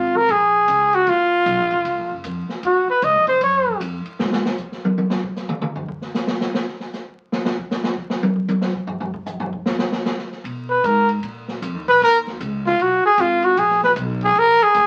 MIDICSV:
0, 0, Header, 1, 5, 480
1, 0, Start_track
1, 0, Key_signature, -6, "minor"
1, 0, Tempo, 390625
1, 1323, Time_signature, 4, 2, 24, 8
1, 18270, End_track
2, 0, Start_track
2, 0, Title_t, "Trumpet"
2, 0, Program_c, 0, 56
2, 0, Note_on_c, 0, 65, 78
2, 209, Note_on_c, 0, 70, 94
2, 227, Note_off_c, 0, 65, 0
2, 383, Note_on_c, 0, 68, 80
2, 401, Note_off_c, 0, 70, 0
2, 1166, Note_on_c, 0, 66, 88
2, 1185, Note_off_c, 0, 68, 0
2, 1341, Note_on_c, 0, 65, 87
2, 1359, Note_off_c, 0, 66, 0
2, 2770, Note_off_c, 0, 65, 0
2, 3264, Note_on_c, 0, 66, 77
2, 3537, Note_off_c, 0, 66, 0
2, 3566, Note_on_c, 0, 71, 82
2, 3741, Note_on_c, 0, 75, 89
2, 3759, Note_off_c, 0, 71, 0
2, 4024, Note_off_c, 0, 75, 0
2, 4032, Note_on_c, 0, 72, 85
2, 4192, Note_off_c, 0, 72, 0
2, 4222, Note_on_c, 0, 73, 78
2, 4658, Note_off_c, 0, 73, 0
2, 13149, Note_on_c, 0, 71, 80
2, 13339, Note_on_c, 0, 70, 80
2, 13358, Note_off_c, 0, 71, 0
2, 13637, Note_off_c, 0, 70, 0
2, 14611, Note_on_c, 0, 71, 106
2, 14765, Note_off_c, 0, 71, 0
2, 14795, Note_on_c, 0, 70, 113
2, 14969, Note_off_c, 0, 70, 0
2, 15562, Note_on_c, 0, 65, 90
2, 15753, Note_on_c, 0, 66, 80
2, 15771, Note_off_c, 0, 65, 0
2, 16036, Note_off_c, 0, 66, 0
2, 16043, Note_on_c, 0, 68, 101
2, 16232, Note_on_c, 0, 65, 91
2, 16250, Note_off_c, 0, 68, 0
2, 16524, Note_on_c, 0, 66, 89
2, 16542, Note_off_c, 0, 65, 0
2, 16697, Note_on_c, 0, 68, 92
2, 16715, Note_off_c, 0, 66, 0
2, 16997, Note_off_c, 0, 68, 0
2, 17008, Note_on_c, 0, 71, 93
2, 17108, Note_off_c, 0, 71, 0
2, 17504, Note_on_c, 0, 68, 98
2, 17681, Note_on_c, 0, 70, 109
2, 17700, Note_off_c, 0, 68, 0
2, 17977, Note_on_c, 0, 68, 97
2, 17996, Note_off_c, 0, 70, 0
2, 18270, Note_off_c, 0, 68, 0
2, 18270, End_track
3, 0, Start_track
3, 0, Title_t, "Upright bass"
3, 0, Program_c, 1, 32
3, 0, Note_on_c, 1, 32, 93
3, 344, Note_off_c, 1, 32, 0
3, 352, Note_on_c, 1, 34, 80
3, 823, Note_off_c, 1, 34, 0
3, 835, Note_on_c, 1, 37, 90
3, 1305, Note_off_c, 1, 37, 0
3, 1315, Note_on_c, 1, 39, 87
3, 1784, Note_off_c, 1, 39, 0
3, 1791, Note_on_c, 1, 35, 100
3, 1961, Note_off_c, 1, 35, 0
3, 1961, Note_on_c, 1, 34, 63
3, 2101, Note_off_c, 1, 34, 0
3, 2109, Note_on_c, 1, 30, 68
3, 2261, Note_off_c, 1, 30, 0
3, 2268, Note_on_c, 1, 37, 70
3, 2439, Note_off_c, 1, 37, 0
3, 2439, Note_on_c, 1, 34, 55
3, 2592, Note_off_c, 1, 34, 0
3, 2599, Note_on_c, 1, 30, 62
3, 2749, Note_off_c, 1, 30, 0
3, 2757, Note_on_c, 1, 41, 87
3, 3042, Note_off_c, 1, 41, 0
3, 3230, Note_on_c, 1, 39, 90
3, 3518, Note_off_c, 1, 39, 0
3, 3714, Note_on_c, 1, 37, 95
3, 3864, Note_off_c, 1, 37, 0
3, 3864, Note_on_c, 1, 34, 59
3, 4017, Note_off_c, 1, 34, 0
3, 4025, Note_on_c, 1, 30, 70
3, 4181, Note_off_c, 1, 30, 0
3, 4191, Note_on_c, 1, 42, 76
3, 4661, Note_off_c, 1, 42, 0
3, 4671, Note_on_c, 1, 41, 96
3, 4959, Note_off_c, 1, 41, 0
3, 5160, Note_on_c, 1, 44, 96
3, 5456, Note_off_c, 1, 44, 0
3, 12829, Note_on_c, 1, 47, 92
3, 13303, Note_off_c, 1, 47, 0
3, 13317, Note_on_c, 1, 44, 105
3, 13787, Note_off_c, 1, 44, 0
3, 13798, Note_on_c, 1, 46, 83
3, 14268, Note_off_c, 1, 46, 0
3, 14278, Note_on_c, 1, 41, 100
3, 14431, Note_off_c, 1, 41, 0
3, 14431, Note_on_c, 1, 39, 53
3, 14592, Note_off_c, 1, 39, 0
3, 14600, Note_on_c, 1, 35, 71
3, 14751, Note_off_c, 1, 35, 0
3, 14759, Note_on_c, 1, 39, 100
3, 15228, Note_off_c, 1, 39, 0
3, 15241, Note_on_c, 1, 37, 106
3, 15707, Note_off_c, 1, 37, 0
3, 15714, Note_on_c, 1, 35, 74
3, 16003, Note_off_c, 1, 35, 0
3, 16191, Note_on_c, 1, 32, 90
3, 16664, Note_off_c, 1, 32, 0
3, 16672, Note_on_c, 1, 34, 94
3, 17145, Note_off_c, 1, 34, 0
3, 17156, Note_on_c, 1, 35, 108
3, 17627, Note_off_c, 1, 35, 0
3, 17636, Note_on_c, 1, 34, 81
3, 17925, Note_off_c, 1, 34, 0
3, 18120, Note_on_c, 1, 38, 98
3, 18270, Note_off_c, 1, 38, 0
3, 18270, End_track
4, 0, Start_track
4, 0, Title_t, "Muted upright bass strokes"
4, 3055, Note_on_c, 9, 29, 44
4, 3178, Note_off_c, 9, 29, 0
4, 3533, Note_on_c, 9, 29, 40
4, 3656, Note_off_c, 9, 29, 0
4, 17939, Note_on_c, 9, 29, 38
4, 18062, Note_off_c, 9, 29, 0
4, 18270, End_track
5, 0, Start_track
5, 0, Title_t, "Drums"
5, 180, Note_on_c, 9, 36, 52
5, 303, Note_off_c, 9, 36, 0
5, 353, Note_on_c, 9, 51, 65
5, 356, Note_on_c, 9, 36, 19
5, 476, Note_off_c, 9, 51, 0
5, 479, Note_off_c, 9, 36, 0
5, 833, Note_on_c, 9, 44, 51
5, 833, Note_on_c, 9, 51, 78
5, 837, Note_on_c, 9, 36, 25
5, 956, Note_off_c, 9, 44, 0
5, 956, Note_off_c, 9, 51, 0
5, 960, Note_off_c, 9, 36, 0
5, 1141, Note_on_c, 9, 51, 45
5, 1264, Note_off_c, 9, 51, 0
5, 1311, Note_on_c, 9, 51, 63
5, 1317, Note_on_c, 9, 36, 23
5, 1434, Note_off_c, 9, 51, 0
5, 1440, Note_off_c, 9, 36, 0
5, 1793, Note_on_c, 9, 44, 52
5, 1793, Note_on_c, 9, 51, 61
5, 1916, Note_off_c, 9, 44, 0
5, 1916, Note_off_c, 9, 51, 0
5, 2099, Note_on_c, 9, 51, 44
5, 2222, Note_off_c, 9, 51, 0
5, 2273, Note_on_c, 9, 51, 68
5, 2276, Note_on_c, 9, 36, 19
5, 2395, Note_off_c, 9, 51, 0
5, 2399, Note_off_c, 9, 36, 0
5, 2749, Note_on_c, 9, 44, 58
5, 2749, Note_on_c, 9, 51, 66
5, 2754, Note_on_c, 9, 36, 19
5, 2872, Note_off_c, 9, 44, 0
5, 2872, Note_off_c, 9, 51, 0
5, 2877, Note_off_c, 9, 36, 0
5, 3061, Note_on_c, 9, 38, 51
5, 3184, Note_off_c, 9, 38, 0
5, 3231, Note_on_c, 9, 51, 63
5, 3235, Note_on_c, 9, 36, 21
5, 3354, Note_off_c, 9, 51, 0
5, 3358, Note_off_c, 9, 36, 0
5, 3711, Note_on_c, 9, 44, 49
5, 3711, Note_on_c, 9, 51, 67
5, 3833, Note_off_c, 9, 44, 0
5, 3833, Note_off_c, 9, 51, 0
5, 4017, Note_on_c, 9, 51, 44
5, 4139, Note_off_c, 9, 51, 0
5, 4188, Note_on_c, 9, 51, 69
5, 4194, Note_on_c, 9, 36, 25
5, 4311, Note_off_c, 9, 51, 0
5, 4317, Note_off_c, 9, 36, 0
5, 4500, Note_on_c, 9, 36, 60
5, 4623, Note_off_c, 9, 36, 0
5, 4677, Note_on_c, 9, 36, 27
5, 4680, Note_on_c, 9, 44, 46
5, 4680, Note_on_c, 9, 51, 76
5, 4800, Note_off_c, 9, 36, 0
5, 4803, Note_off_c, 9, 44, 0
5, 4803, Note_off_c, 9, 51, 0
5, 4983, Note_on_c, 9, 51, 45
5, 5106, Note_off_c, 9, 51, 0
5, 5153, Note_on_c, 9, 38, 106
5, 5276, Note_off_c, 9, 38, 0
5, 5312, Note_on_c, 9, 38, 110
5, 5435, Note_off_c, 9, 38, 0
5, 5471, Note_on_c, 9, 38, 101
5, 5594, Note_off_c, 9, 38, 0
5, 5625, Note_on_c, 9, 44, 52
5, 5631, Note_on_c, 9, 36, 77
5, 5748, Note_off_c, 9, 44, 0
5, 5754, Note_off_c, 9, 36, 0
5, 5798, Note_on_c, 9, 38, 39
5, 5921, Note_off_c, 9, 38, 0
5, 5956, Note_on_c, 9, 48, 92
5, 6079, Note_off_c, 9, 48, 0
5, 6115, Note_on_c, 9, 48, 92
5, 6238, Note_off_c, 9, 48, 0
5, 6267, Note_on_c, 9, 38, 88
5, 6390, Note_off_c, 9, 38, 0
5, 6433, Note_on_c, 9, 36, 84
5, 6556, Note_off_c, 9, 36, 0
5, 6590, Note_on_c, 9, 44, 52
5, 6592, Note_on_c, 9, 38, 49
5, 6712, Note_off_c, 9, 44, 0
5, 6715, Note_off_c, 9, 38, 0
5, 6744, Note_on_c, 9, 47, 86
5, 6867, Note_off_c, 9, 47, 0
5, 6900, Note_on_c, 9, 47, 93
5, 7023, Note_off_c, 9, 47, 0
5, 7071, Note_on_c, 9, 43, 91
5, 7194, Note_off_c, 9, 43, 0
5, 7231, Note_on_c, 9, 36, 87
5, 7354, Note_off_c, 9, 36, 0
5, 7390, Note_on_c, 9, 38, 44
5, 7513, Note_off_c, 9, 38, 0
5, 7549, Note_on_c, 9, 44, 54
5, 7551, Note_on_c, 9, 38, 91
5, 7672, Note_off_c, 9, 44, 0
5, 7674, Note_off_c, 9, 38, 0
5, 7708, Note_on_c, 9, 38, 105
5, 7831, Note_off_c, 9, 38, 0
5, 7872, Note_on_c, 9, 38, 91
5, 7995, Note_off_c, 9, 38, 0
5, 8039, Note_on_c, 9, 38, 99
5, 8162, Note_off_c, 9, 38, 0
5, 8202, Note_on_c, 9, 38, 35
5, 8325, Note_off_c, 9, 38, 0
5, 8356, Note_on_c, 9, 38, 45
5, 8479, Note_off_c, 9, 38, 0
5, 8517, Note_on_c, 9, 44, 60
5, 8519, Note_on_c, 9, 38, 47
5, 8640, Note_off_c, 9, 44, 0
5, 8642, Note_off_c, 9, 38, 0
5, 8998, Note_on_c, 9, 38, 97
5, 9121, Note_off_c, 9, 38, 0
5, 9157, Note_on_c, 9, 38, 113
5, 9280, Note_off_c, 9, 38, 0
5, 9319, Note_on_c, 9, 36, 73
5, 9441, Note_off_c, 9, 36, 0
5, 9472, Note_on_c, 9, 44, 56
5, 9475, Note_on_c, 9, 38, 88
5, 9595, Note_off_c, 9, 44, 0
5, 9598, Note_off_c, 9, 38, 0
5, 9630, Note_on_c, 9, 38, 103
5, 9753, Note_off_c, 9, 38, 0
5, 9794, Note_on_c, 9, 36, 69
5, 9917, Note_off_c, 9, 36, 0
5, 9951, Note_on_c, 9, 38, 92
5, 10074, Note_off_c, 9, 38, 0
5, 10109, Note_on_c, 9, 48, 100
5, 10232, Note_off_c, 9, 48, 0
5, 10272, Note_on_c, 9, 36, 72
5, 10395, Note_off_c, 9, 36, 0
5, 10423, Note_on_c, 9, 44, 63
5, 10426, Note_on_c, 9, 48, 102
5, 10546, Note_off_c, 9, 44, 0
5, 10548, Note_off_c, 9, 48, 0
5, 10586, Note_on_c, 9, 38, 90
5, 10709, Note_off_c, 9, 38, 0
5, 10751, Note_on_c, 9, 36, 78
5, 10873, Note_off_c, 9, 36, 0
5, 10902, Note_on_c, 9, 43, 102
5, 11024, Note_off_c, 9, 43, 0
5, 11063, Note_on_c, 9, 43, 103
5, 11186, Note_off_c, 9, 43, 0
5, 11229, Note_on_c, 9, 36, 86
5, 11351, Note_off_c, 9, 36, 0
5, 11379, Note_on_c, 9, 44, 53
5, 11382, Note_on_c, 9, 43, 86
5, 11502, Note_off_c, 9, 44, 0
5, 11505, Note_off_c, 9, 43, 0
5, 11548, Note_on_c, 9, 43, 109
5, 11671, Note_off_c, 9, 43, 0
5, 11709, Note_on_c, 9, 36, 75
5, 11832, Note_off_c, 9, 36, 0
5, 11866, Note_on_c, 9, 38, 109
5, 11988, Note_off_c, 9, 38, 0
5, 12024, Note_on_c, 9, 38, 102
5, 12147, Note_off_c, 9, 38, 0
5, 12191, Note_on_c, 9, 38, 95
5, 12314, Note_off_c, 9, 38, 0
5, 12353, Note_on_c, 9, 44, 56
5, 12356, Note_on_c, 9, 38, 97
5, 12476, Note_off_c, 9, 44, 0
5, 12479, Note_off_c, 9, 38, 0
5, 12512, Note_on_c, 9, 38, 41
5, 12635, Note_off_c, 9, 38, 0
5, 12677, Note_on_c, 9, 38, 32
5, 12800, Note_off_c, 9, 38, 0
5, 12835, Note_on_c, 9, 36, 22
5, 12839, Note_on_c, 9, 51, 58
5, 12957, Note_off_c, 9, 36, 0
5, 12962, Note_off_c, 9, 51, 0
5, 13316, Note_on_c, 9, 36, 22
5, 13321, Note_on_c, 9, 44, 57
5, 13321, Note_on_c, 9, 51, 64
5, 13439, Note_off_c, 9, 36, 0
5, 13444, Note_off_c, 9, 44, 0
5, 13444, Note_off_c, 9, 51, 0
5, 13624, Note_on_c, 9, 51, 47
5, 13747, Note_off_c, 9, 51, 0
5, 13796, Note_on_c, 9, 36, 28
5, 13796, Note_on_c, 9, 51, 67
5, 13918, Note_off_c, 9, 51, 0
5, 13919, Note_off_c, 9, 36, 0
5, 14107, Note_on_c, 9, 38, 54
5, 14230, Note_off_c, 9, 38, 0
5, 14280, Note_on_c, 9, 36, 25
5, 14283, Note_on_c, 9, 44, 62
5, 14283, Note_on_c, 9, 51, 75
5, 14403, Note_off_c, 9, 36, 0
5, 14405, Note_off_c, 9, 44, 0
5, 14405, Note_off_c, 9, 51, 0
5, 14763, Note_on_c, 9, 36, 26
5, 14769, Note_on_c, 9, 51, 71
5, 14886, Note_off_c, 9, 36, 0
5, 14892, Note_off_c, 9, 51, 0
5, 15075, Note_on_c, 9, 38, 56
5, 15198, Note_off_c, 9, 38, 0
5, 15243, Note_on_c, 9, 36, 23
5, 15244, Note_on_c, 9, 44, 56
5, 15244, Note_on_c, 9, 51, 72
5, 15366, Note_off_c, 9, 36, 0
5, 15367, Note_off_c, 9, 44, 0
5, 15367, Note_off_c, 9, 51, 0
5, 15551, Note_on_c, 9, 38, 44
5, 15674, Note_off_c, 9, 38, 0
5, 15719, Note_on_c, 9, 36, 25
5, 15720, Note_on_c, 9, 51, 64
5, 15842, Note_off_c, 9, 36, 0
5, 15843, Note_off_c, 9, 51, 0
5, 16194, Note_on_c, 9, 44, 52
5, 16194, Note_on_c, 9, 51, 78
5, 16196, Note_on_c, 9, 36, 20
5, 16316, Note_off_c, 9, 44, 0
5, 16316, Note_off_c, 9, 51, 0
5, 16319, Note_off_c, 9, 36, 0
5, 16495, Note_on_c, 9, 51, 45
5, 16618, Note_off_c, 9, 51, 0
5, 16677, Note_on_c, 9, 51, 72
5, 16679, Note_on_c, 9, 36, 23
5, 16800, Note_off_c, 9, 51, 0
5, 16802, Note_off_c, 9, 36, 0
5, 16838, Note_on_c, 9, 38, 34
5, 16960, Note_off_c, 9, 38, 0
5, 16993, Note_on_c, 9, 38, 52
5, 17116, Note_off_c, 9, 38, 0
5, 17153, Note_on_c, 9, 44, 62
5, 17153, Note_on_c, 9, 51, 70
5, 17158, Note_on_c, 9, 36, 25
5, 17276, Note_off_c, 9, 44, 0
5, 17276, Note_off_c, 9, 51, 0
5, 17281, Note_off_c, 9, 36, 0
5, 17460, Note_on_c, 9, 51, 47
5, 17583, Note_off_c, 9, 51, 0
5, 17632, Note_on_c, 9, 51, 67
5, 17755, Note_off_c, 9, 51, 0
5, 17945, Note_on_c, 9, 36, 51
5, 18068, Note_off_c, 9, 36, 0
5, 18118, Note_on_c, 9, 44, 67
5, 18118, Note_on_c, 9, 51, 80
5, 18120, Note_on_c, 9, 36, 25
5, 18241, Note_off_c, 9, 44, 0
5, 18241, Note_off_c, 9, 51, 0
5, 18242, Note_off_c, 9, 36, 0
5, 18270, End_track
0, 0, End_of_file